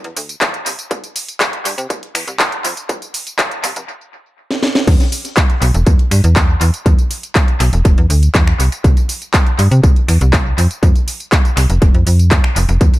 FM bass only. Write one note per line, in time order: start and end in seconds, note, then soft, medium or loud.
0.04 0.14 E2 medium
0.16 0.36 D2 medium
0.41 0.60 E2 loud
0.66 0.76 C2 medium
0.91 1.01 C2 loud
1.65 1.75 G2 loud
1.78 1.87 C3 medium
2.15 2.25 E2 loud
2.27 2.60 C2 medium
2.64 2.74 F2 loud
2.89 2.99 F2 loud
3.64 3.73 C2 loud
3.76 3.86 F1 medium
4.87 4.97 E2 loud
5.62 5.72 B1 loud
5.74 5.84 E1 medium
5.87 5.96 E2 medium
6.11 6.21 G2 loud
6.24 6.57 E2 medium
6.61 6.71 E2 loud
6.86 6.96 E2 loud
7.60 7.70 B1 loud
7.73 7.82 E1 medium
7.85 7.95 E1 medium
7.98 8.07 E2 medium
8.10 8.29 D2 medium
8.35 8.54 E2 loud
8.60 8.69 C2 medium
8.84 8.94 C2 loud
9.59 9.68 G2 loud
9.71 9.81 C3 medium
9.84 9.93 C2 medium
10.09 10.18 E2 loud
10.21 10.53 C2 medium
10.58 10.68 F2 medium
10.83 10.92 F2 loud
11.57 11.67 C2 loud
11.70 11.79 F1 medium
11.94 12.04 F2 medium
12.07 12.39 F2 medium
12.56 12.66 F1 medium
12.69 12.78 F1 medium
12.81 12.91 E2 loud